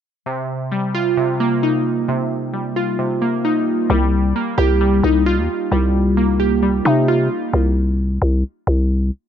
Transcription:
0.26 synth keys C3
0.72 synth keys G3
0.95 synth keys F4
1.17 synth keys C3
1.40 synth keys A#3
1.63 synth keys D#4
2.08 synth keys C3
2.53 synth keys G3
2.76 synth keys F4
2.99 synth keys C3
3.22 synth keys A#3
3.45 synth keys D#4
3.90 808-style bass C2, synth keys G3
4.36 synth keys A#3
4.58 808-style bass C2, synth keys G4
4.81 synth keys G3
5.03 808-style bass C2, synth keys D#4
5.26 synth keys F4
5.38 808-style bass D#2
5.72 808-style bass C2, synth keys G3
6.17 synth keys A#3
6.40 synth keys G4
6.63 synth keys G3
6.85 808-style bass C3, synth keys D#4
7.08 synth keys F4
7.54 808-style bass C2
8.22 808-style bass C2
8.67 808-style bass C2

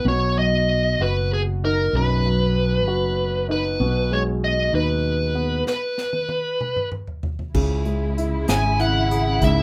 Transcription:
0.05 fretless electric bass B1, grand piano B2, lead electric guitar C#5
0.37 grand piano F#3, lead electric guitar D#5
1.00 fretless electric bass F#1, grand piano F#4, lead electric guitar B4
1.33 lead electric guitar G#4
1.64 grand piano D#4, lead electric guitar A#4
1.93 fretless electric bass B1, grand piano F#2, lead electric guitar B4
2.26 grand piano F#3
2.87 fretless electric bass F#1, grand piano F#4
3.49 grand piano D#4, lead electric guitar B4
3.80 fretless electric bass B1, grand piano B2
4.11 grand piano G#3, lead electric guitar C#5
4.44 lead electric guitar D#5
4.73 fretless electric bass D#2, grand piano D#4, lead electric guitar B4
5.35 grand piano B3
5.67 lead electric guitar B4, snare
5.98 snare
6.13 high tom
6.29 high tom
6.61 mid tom
6.76 mid tom
6.92 mid tom
7.07 floor tom
7.23 floor tom
7.39 floor tom
7.54 fretless electric bass C#2, string section C#3 G#3 E4, grand piano C#3, kick, crash
7.85 grand piano G#3, closed hi-hat
8.18 grand piano E4, closed hi-hat
8.48 fretless electric bass G#1, grand piano G#4, lead electric guitar G#5, snare, closed hi-hat
8.79 grand piano E4, lead electric guitar F#5, closed hi-hat
9.11 grand piano G#4, closed hi-hat
9.42 fretless electric bass C#2, grand piano G#2, string section A#3, lead electric guitar E5, kick, closed hi-hat

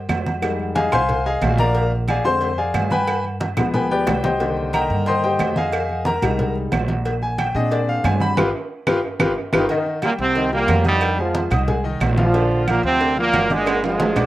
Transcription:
0.09 upright bass F2, cowbell, high conga, low timbale, low agogo, claves
0.26 high conga, low agogo
0.42 grand piano G3 G#3 D#4, cowbell, high conga, low agogo, claves
0.59 high conga
0.75 grand piano G#4 D#5 F5 G#5, cowbell, high conga, low timbale, low agogo
0.92 upright bass C2, grand piano C5 F5 G#5 C6, cowbell, high conga, low conga, low agogo, claves
1.09 cowbell, high conga, low conga
1.26 grand piano G#4 D#5 F5 G#5, high conga
1.41 upright bass A#1, cowbell, high conga, low timbale, low agogo, claves
1.58 grand piano A#4 D5 F5 A#5, cowbell, high conga
1.75 cowbell, high conga, low agogo
1.92 high conga
2.08 grand piano G#4 D5 F5 G#5, cowbell, high conga, low timbale, low agogo, claves
2.24 upright bass F2, grand piano D3 G#3 C4 C5 C6, high conga
2.41 cowbell, high conga, low agogo
2.58 grand piano G#4 D5 F5 G#5, high conga
2.74 upright bass G2, cowbell, high conga, low timbale, low agogo, claves
2.90 grand piano B4 G5 G#5 B5, high conga, low agogo
3.07 cowbell, high conga, low agogo, claves
3.24 high conga
3.40 cowbell, high conga, low timbale, low agogo
3.57 upright bass D2, grand piano F3 G#3 B3, cowbell, high bongo, high conga, low conga, low agogo, claves
3.74 grand piano B4 G5 G#5 B5, cowbell, high conga, low conga
3.91 grand piano G4 B4 D5 G5, high conga
4.07 upright bass C2, cowbell, low bongo, high conga, low timbale, low agogo, claves
4.24 grand piano G4 C5 D#5 G5, cowbell, low bongo, high conga
4.40 grand piano D3 D#3 A#3, cowbell, high conga, low agogo
4.57 high conga
4.73 grand piano A#4 D#5 G5 A#5, cowbell, high conga, low timbale, low agogo, claves
4.90 upright bass G2, high conga
5.06 grand piano C5 D#5 G5 C6, cowbell, high conga, low agogo
5.23 grand piano G4 C5 D#5 G5, high conga
5.39 upright bass F2, cowbell, high conga, low timbale, low agogo, claves
5.56 grand piano G#4 D#5 F5 G#5, high conga, low agogo
5.72 cowbell, high conga, low agogo, claves
5.89 high conga
6.05 grand piano A#4 A#5, cowbell, high conga, low timbale, low agogo
6.22 upright bass C2, grand piano G3 G#3 D#4, cowbell, high conga, low conga, low agogo, claves
6.39 cowbell, high conga, low conga
6.55 high conga
6.72 upright bass A#1, cowbell, high conga, low timbale, low agogo, claves
6.88 cowbell, high conga
7.05 cowbell, high conga, low agogo
7.22 grand piano G#5, high conga
7.38 grand piano G5, cowbell, high conga, low timbale, low agogo, claves
7.55 upright bass A#2, grand piano C4 D4 G#4 D#5, high conga
7.71 grand piano D5, cowbell, high conga, low agogo
7.88 grand piano F5, high conga
8.04 upright bass G2, grand piano G#5, cowbell, high conga, low timbale, low agogo, claves
8.20 grand piano B5, high conga, low agogo
8.37 upright bass G1, grand piano F4 G4 B4, cowbell, high conga, high timbale, claves
8.87 upright bass G1, grand piano F4 G4 B4, cowbell, high conga, high timbale, claves
9.20 upright bass G1, grand piano F4 G4 B4, cowbell, high conga, high timbale, claves
9.53 upright bass G1, trombone section D#3 D#4, grand piano F4 G4 B4, cowbell, high conga, high timbale, claves
9.69 grand piano D#3 D#4 D#5, cowbell, high conga, low agogo
9.86 high conga
10.02 trombone section A#2 A#3, grand piano G3 G4 G5, cowbell, high conga, low timbale, low agogo, claves
10.19 upright bass C2, trombone section C3 C4, high conga
10.35 grand piano D#3 D#4 D#5, cowbell, high conga, low agogo
10.52 trombone section A#2 A#3, grand piano G3 G4 G5, high conga
10.68 upright bass F2, cowbell, high conga, low timbale, low agogo, claves
10.85 trombone section G2 G3, grand piano D#4 D#5 D#6, high conga, low agogo
11.01 cowbell, high conga, low agogo, claves
11.18 trombone section F3 F4, grand piano G#3 G#4 G#5, high conga
11.35 cowbell, high conga, low timbale, low agogo
11.50 upright bass C2, grand piano D#4 D#5 D#6, cowbell, high conga, low conga, low agogo, claves
11.68 grand piano G#3 G#4 G#5, cowbell, high conga, low conga
11.84 grand piano D#3 D#4 D#5, high conga
12.00 upright bass A#1, cowbell, high conga, low timbale, low agogo, claves
12.17 grand piano F3 F4 F5, trombone section F3 F4, cowbell, high conga
12.34 grand piano D3 D4 D5, cowbell, high conga, low agogo
12.51 high conga
12.67 trombone section A#2 A#3, grand piano F3 F4 F5, cowbell, high conga, low timbale, low agogo, claves
12.83 upright bass D2, trombone section C3 C4, high conga
13.01 grand piano D3 D4 D5, cowbell, high conga, low agogo
13.17 trombone section A#2 A#3, grand piano F3 F4 F5, high conga
13.33 upright bass G1, cowbell, high conga, low timbale, low agogo, claves
13.50 trombone section A#2 G#3, grand piano D4 D5 D6, high conga, low agogo
13.66 cowbell, high conga, high timbale, low agogo, claves
13.83 trombone section G#2 G#3, grand piano F3 F4 F5, high conga, high timbale
14.00 cowbell, high conga, low timbale, low agogo
14.16 upright bass B1, grand piano D4 D5 D6, cowbell, high conga, low conga, high timbale, low agogo, claves

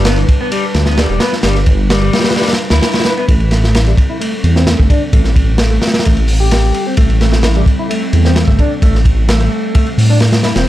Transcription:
Already playing: detuned saw bass G1, ambient pad G3 D4 B4
0.05 clean electric guitar B3, snare, ride
0.17 clean electric guitar E3, ride
0.29 kick, ride
0.41 clean electric guitar B3
0.52 clean electric guitar G3, ride
0.74 detuned saw bass D2, snare, ride
0.86 clean electric guitar B3, snare
0.97 clean electric guitar G3, snare, ride
1.09 detuned saw bass E1, clean electric guitar G3, ride
1.20 clean electric guitar B3, soft synth lead B4, snare, ride
1.33 snare
1.43 detuned saw bass G1, clean electric guitar G3, snare, ride
1.55 snare
1.66 kick, ride
1.90 clean electric guitar G3, snare, ride
2.01 clean electric guitar G3, ride
2.13 snare, ride
2.19 snare, ride
2.24 soft synth lead B4, snare, ride
2.31 snare, ride
2.36 clean electric guitar G3, soft synth lead B4, snare, ride
2.42 snare, ride
2.48 snare, ride
2.53 snare, ride
2.58 ride
2.70 detuned saw bass D2, clean electric guitar E4, snare, ride
2.82 snare, ride
2.93 snare, ride
3.00 snare, ride
3.05 soft synth lead B4, snare, ride
3.17 clean electric guitar B3, soft synth lead B4, ride
3.28 detuned saw bass A1, ambient pad G3 C4 A4, clean electric guitar A3, kick, ride
3.40 ride
3.51 clean electric guitar A3, snare, ride
3.64 snare
3.75 clean electric guitar E4, snare, ride
3.86 clean electric guitar G3, ride
3.97 kick, ride
4.10 clean electric guitar E4
4.21 clean electric guitar A3, ride
4.44 detuned saw bass E2, ride
4.55 clean electric guitar C4, snare
4.67 clean electric guitar A3, snare, ride
4.79 detuned saw bass G1, clean electric guitar A3, kick
4.90 clean electric guitar D4, kick, ride
5.13 detuned saw bass A1, clean electric guitar A3, kick, ride
5.25 snare
5.36 kick, ride
5.58 clean electric guitar A3, snare, ride
5.70 clean electric guitar A3, ride
5.82 snare, ride
5.87 snare, ride
5.94 snare, ride
5.99 snare, ride
6.05 detuned saw bass A1, clean electric guitar A3, kick, ride
6.17 ride
6.28 open hi-hat
6.40 clean electric guitar G4
6.51 snare, ride
6.74 ride
6.87 clean electric guitar C4
6.97 detuned saw bass A1, clean electric guitar A3, kick, ride
7.10 ride
7.21 clean electric guitar A3, snare, ride
7.33 snare
7.43 clean electric guitar E4, snare, ride
7.55 clean electric guitar G3, ride
7.66 kick, ride
7.79 clean electric guitar E4
7.90 clean electric guitar A3, ride
8.13 detuned saw bass E2, ride
8.25 clean electric guitar C4, snare
8.36 clean electric guitar A3, snare, ride
8.48 detuned saw bass G1, clean electric guitar A3, kick
8.59 clean electric guitar D4, kick, ride
8.82 detuned saw bass A1, clean electric guitar A3, kick, ride
8.95 snare
9.05 kick, ride
9.28 clean electric guitar A3, snare, ride
9.40 clean electric guitar A3, ride
9.75 clean electric guitar A3, kick, ride
9.87 ride
9.98 detuned saw bass A2, open hi-hat
10.10 clean electric guitar D4
10.20 snare, ride
10.32 snare, ride
10.43 clean electric guitar E4, snare, ride
10.56 detuned saw bass E1, clean electric guitar C4, snare, ride

